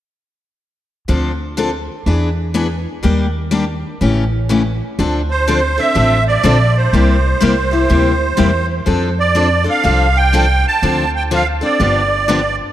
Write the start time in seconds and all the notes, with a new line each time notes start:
1.08 D2 D3 F3 C4 D4 A4
1.57 D3 F3 C4 D4 A4
2.06 E2 E3 B3 D4 G#4
2.54 E3 B3 D4 G#4
3.03 D#2 D#3 G3 A#3 D4 G4
3.51 D#3 G3 A#3 D4 G4
4.01 A1 C#3 E3 A3 C#4 G4
4.49 C#3 E3 A3 C#4 G4
4.99 D2 D3 F3 C4 D4 A4
5.31 C5
5.48 D3 F3 C4 D4 A4
5.78 C4 D4 A4 E5
5.95 A1 D3 F3 C4 D4 A4
6.28 D5
6.43 A#1 D3 F3 C4 D4 A4
6.77 C5
6.93 C2 C3 G3 A#3 E4 G4
7.41 C2 C3 G3 A#3 E4 G4
7.71 A#3 E4 G4
7.89 D2 C3 G3 A#3 E4 G4
8.37 E2 C3 G3 A#3 E4 G4
8.86 F2 F3 C4 D4 A4
9.20 D5
9.35 F3 C4 D4 A4
9.64 C4 D4 A4
9.70 F5
9.83 C2 F3 C4 D4 A4
10.17 G5
10.33 F3 C4 D4 A4
10.68 A5
10.82 D2 D3 F3 C4 D4 A4
11.16 G5
11.31 D3 F3 C4 D4 A4 F5
11.61 C4 D4 A4 D5
11.80 G1 D3 F3 B3 D4 G4
12.28 D3 F3 B3 D4 G4